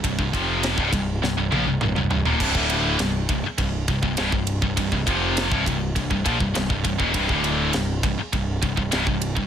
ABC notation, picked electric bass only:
X:1
M:4/4
L:1/16
Q:1/4=101
K:Dblyd
V:1 name="Picked electric bass" clef=bass
C,,, C,,, F,,,3 C,,, C,,,2 C,,, C,,, B,,, C,,, C,,, C,,, C,,, E,,, | C,,, =D,,,3 C,,,2 C,,, z C,,,2 C,,, C,,, C,,, C,,,2 C,,, | C,,, C,,, F,,,3 C,,, C,,,2 C,,, C,,, B,,, C,,, C,,, C,,, C,,, E,,, | C,,, =D,,,3 C,,,2 C,,, z C,,,2 C,,, C,,, C,,, C,,,2 C,,, |]